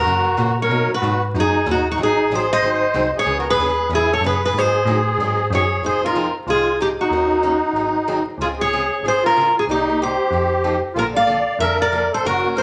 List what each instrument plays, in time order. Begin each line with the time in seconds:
Already playing: accordion F#4
0.00 steel-string acoustic guitar A#4
0.06 fm bass F#2, steel-string acoustic guitar C#3 E3 A#3 C#4 F#4
0.37 fm bass A#2, steel-string acoustic guitar C#3 E3 A#3 C#4 F#4
0.62 accordion A#4, steel-string acoustic guitar C#5
0.69 fm bass B2, steel-string acoustic guitar B2 F#3 A#3 D#4 F#4
0.94 accordion F#4, steel-string acoustic guitar B4
1.02 fm bass G#2, steel-string acoustic guitar B2 F#3 A#3 D#4 F#4
1.34 fm bass F#2, steel-string acoustic guitar B2 F#3 A#3 D#4 F#4, accordion D#4
1.40 steel-string acoustic guitar G#4
1.66 fm bass D#2, steel-string acoustic guitar B2 F#3 A#3 D#4 F#4
1.71 accordion D#4, steel-string acoustic guitar F#4
1.91 accordion D#4, steel-string acoustic guitar F#4
1.98 fm bass G#1, steel-string acoustic guitar D#3 F#3 C4 D#4 G#4
2.02 accordion D#4, steel-string acoustic guitar G#4
2.30 fm bass A1, steel-string acoustic guitar D#3 F#3 C4 D#4 G#4, accordion G#4
2.35 steel-string acoustic guitar C5
2.52 accordion C5, steel-string acoustic guitar D#5
2.63 fm bass G#1, steel-string acoustic guitar D#3 F#3 C4 D#4 G#4
2.94 fm bass C2, steel-string acoustic guitar D#3 F#3 C4 D#4 G#4
3.13 fm bass C2, accordion G#4
3.19 steel-string acoustic guitar C#5
3.25 fm bass C#2, steel-string acoustic guitar C#3 E3 B3 C#4 G#4
3.37 accordion F#4, steel-string acoustic guitar A#4
3.49 accordion G#4, steel-string acoustic guitar B4
3.58 fm bass D#2, steel-string acoustic guitar C#3 E3 B3 C#4 G#4
3.89 fm bass E2, steel-string acoustic guitar C#3 E3 B3 C#4 G#4, accordion E4
3.95 steel-string acoustic guitar G#4
4.12 accordion A4, steel-string acoustic guitar C#5
4.21 fm bass F#2, steel-string acoustic guitar C#3 E3 B3 C#4 G#4
4.25 accordion G#4, steel-string acoustic guitar B4
4.44 accordion G#4, steel-string acoustic guitar B4
4.54 fm bass G#2, steel-string acoustic guitar D#3 F#3 C4 G#4, accordion G#4
4.58 steel-string acoustic guitar D#4 C5
4.85 fm bass A2, steel-string acoustic guitar D#3 F#3 C4 D#4 G#4
5.18 fm bass G#2, steel-string acoustic guitar D#3 F#3 C4 D#4 G#4
5.50 fm bass F#2, steel-string acoustic guitar D#3 F#3 C4 D#4 G#4, accordion G#4
5.55 steel-string acoustic guitar C#5
5.82 fm bass F1, steel-string acoustic guitar F3 C4 D#4 G#4 C5, accordion G#4
6.02 steel-string acoustic guitar C4 D#4 G#4 A#4, accordion F4
6.15 steel-string acoustic guitar F3 C4 D#4 G#4
6.47 fm bass C2, steel-string acoustic guitar F3 C4 D#4 G#4, accordion F4
6.80 steel-string acoustic guitar F3 C4 D#4 G4 G#4, accordion D#4
6.99 accordion D#4, steel-string acoustic guitar F#4
7.10 fm bass D#2, steel-string acoustic guitar D#3 A#3 C#4 F#4 A#4
7.31 steel-string acoustic guitar C#4 F#4 A#4
7.43 steel-string acoustic guitar D#3 A#3 C#4 F#4 A#4
7.73 fm bass G#1, steel-string acoustic guitar D#3 F#3 C4 D#4 G#4
8.08 steel-string acoustic guitar D#3 F#3 C4 D#4 G#4
8.38 fm bass C#2, steel-string acoustic guitar C#3 G#3 C4 F4 G#4, accordion F4
8.42 steel-string acoustic guitar G#4
8.59 steel-string acoustic guitar C4 F4 G#4 C#5, accordion G#4
8.73 steel-string acoustic guitar C#3 G#3 C4 F4 G#4
9.03 fm bass G#1, steel-string acoustic guitar C#3 G#3 C4 F4 G#4, accordion G#4
9.08 steel-string acoustic guitar C5
9.23 accordion F4, steel-string acoustic guitar A#4
9.36 steel-string acoustic guitar C#3 G#3 C4 F4 G#4
9.54 accordion F4
9.59 steel-string acoustic guitar G#4
9.67 fm bass C2, steel-string acoustic guitar C3 G3 A#3 D#4 G4, accordion D#4
9.89 steel-string acoustic guitar A#3 D#4 G4
10.01 steel-string acoustic guitar C3 G3 A#3 D#4 G4 C5, accordion G4
10.31 fm bass F2, steel-string acoustic guitar F3 C4 D#4 A4
10.64 steel-string acoustic guitar F3 C4 D#4 A4
10.94 fm bass A#1, steel-string acoustic guitar D3 F3 A#3 D4 A4, accordion F4
10.99 steel-string acoustic guitar A#4
11.15 steel-string acoustic guitar A#3 D4 A4 F5, accordion D5
11.27 steel-string acoustic guitar D3 F3 A#3 D4 A4
11.59 fm bass F2, steel-string acoustic guitar D3 F3 A#3 D4 A4 E5, accordion A#4
11.80 accordion A#4, steel-string acoustic guitar D5
11.92 steel-string acoustic guitar D3 F3 A#3 D4 A4
12.12 accordion A4, steel-string acoustic guitar C5
12.23 fm bass F#1, steel-string acoustic guitar C#3 E3 A#3 C#4 F#4 A#4, accordion F#4
12.44 steel-string acoustic guitar A#3 C#4 F#4
12.56 steel-string acoustic guitar C#3 E3 A#3 C#4 F#4 C#5, accordion A#4